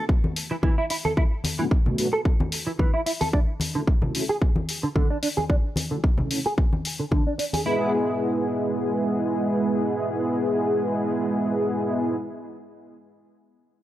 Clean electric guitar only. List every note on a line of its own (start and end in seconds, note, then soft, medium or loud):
0.51 0.55 E3 medium
0.63 0.74 E3 medium
0.78 0.84 E4 medium
0.90 0.95 E4 medium
1.05 1.11 A4 loud
1.17 1.22 E4 medium
1.59 1.63 E3 medium
2.13 2.19 A4 medium
2.67 2.70 E3 medium
2.79 2.90 E3 medium
2.94 3.00 E4 medium
3.06 3.11 E4 medium
3.21 3.27 A4 medium
3.33 3.38 D4 medium
3.75 3.79 D3 medium
4.29 4.35 G#4 medium
4.83 4.87 D3 medium
4.96 5.07 D3 medium
5.10 5.16 D4 medium
5.23 5.27 D4 medium
5.37 5.43 G#4 medium
5.50 5.54 D4 medium
5.91 5.95 D3 medium
6.46 6.52 G#4 medium
7.00 7.03 D3 medium
7.12 7.23 D3 medium
7.27 7.33 D4 medium
7.39 7.43 D4 medium
7.54 7.60 G#4 medium
7.66 7.91 E4 medium